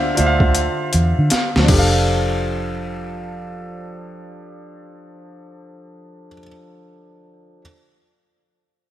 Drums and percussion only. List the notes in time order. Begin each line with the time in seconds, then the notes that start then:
0.17 closed hi-hat
0.40 kick
0.55 closed hi-hat
0.93 closed hi-hat
1.30 snare, closed hi-hat
1.56 snare
1.68 kick, crash